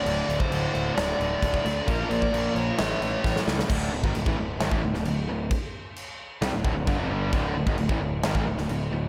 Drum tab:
CC |x-x-x-x-x-x-x-x-|x-x-x-x-x-x-----|x---x---x---x---|x---x---x---x---|
SD |--------o-------|--------o---oooo|--------o--o----|--------o-------|
BD |---o--------oo--|o--o--------o---|o--o-o---o------|o---------o-o---|

CC |x---x---x---x---|
SD |--------o--o----|
BD |o--o-o---o------|